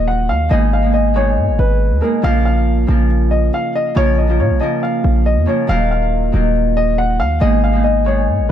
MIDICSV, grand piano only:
0, 0, Header, 1, 2, 480
1, 0, Start_track
1, 0, Tempo, 431655
1, 568, Time_signature, 4, 2, 24, 8
1, 9471, End_track
2, 0, Start_track
2, 0, Title_t, "Grand piano"
2, 0, Program_c, 0, 0
2, 84, Note_on_c, 0, 78, 84
2, 292, Note_off_c, 0, 78, 0
2, 325, Note_on_c, 0, 77, 91
2, 532, Note_off_c, 0, 77, 0
2, 565, Note_on_c, 0, 75, 95
2, 772, Note_off_c, 0, 75, 0
2, 816, Note_on_c, 0, 77, 77
2, 1019, Note_off_c, 0, 77, 0
2, 1042, Note_on_c, 0, 75, 82
2, 1251, Note_off_c, 0, 75, 0
2, 1289, Note_on_c, 0, 73, 86
2, 1740, Note_off_c, 0, 73, 0
2, 1767, Note_on_c, 0, 71, 84
2, 2219, Note_off_c, 0, 71, 0
2, 2247, Note_on_c, 0, 70, 79
2, 2454, Note_off_c, 0, 70, 0
2, 2494, Note_on_c, 0, 77, 107
2, 2698, Note_off_c, 0, 77, 0
2, 2729, Note_on_c, 0, 77, 88
2, 3405, Note_off_c, 0, 77, 0
2, 3680, Note_on_c, 0, 75, 82
2, 3890, Note_off_c, 0, 75, 0
2, 3937, Note_on_c, 0, 77, 87
2, 4139, Note_off_c, 0, 77, 0
2, 4175, Note_on_c, 0, 75, 94
2, 4378, Note_off_c, 0, 75, 0
2, 4413, Note_on_c, 0, 73, 119
2, 4617, Note_off_c, 0, 73, 0
2, 4647, Note_on_c, 0, 75, 84
2, 4854, Note_off_c, 0, 75, 0
2, 4892, Note_on_c, 0, 73, 82
2, 5097, Note_off_c, 0, 73, 0
2, 5121, Note_on_c, 0, 75, 84
2, 5330, Note_off_c, 0, 75, 0
2, 5370, Note_on_c, 0, 77, 79
2, 5820, Note_off_c, 0, 77, 0
2, 5849, Note_on_c, 0, 75, 88
2, 6055, Note_off_c, 0, 75, 0
2, 6086, Note_on_c, 0, 73, 75
2, 6293, Note_off_c, 0, 73, 0
2, 6330, Note_on_c, 0, 77, 112
2, 6536, Note_off_c, 0, 77, 0
2, 6573, Note_on_c, 0, 77, 75
2, 7247, Note_off_c, 0, 77, 0
2, 7526, Note_on_c, 0, 75, 95
2, 7733, Note_off_c, 0, 75, 0
2, 7765, Note_on_c, 0, 78, 86
2, 7972, Note_off_c, 0, 78, 0
2, 8003, Note_on_c, 0, 77, 94
2, 8211, Note_off_c, 0, 77, 0
2, 8243, Note_on_c, 0, 75, 98
2, 8452, Note_off_c, 0, 75, 0
2, 8493, Note_on_c, 0, 77, 80
2, 8697, Note_off_c, 0, 77, 0
2, 8718, Note_on_c, 0, 75, 79
2, 8928, Note_off_c, 0, 75, 0
2, 8965, Note_on_c, 0, 73, 83
2, 9418, Note_off_c, 0, 73, 0
2, 9471, End_track
0, 0, End_of_file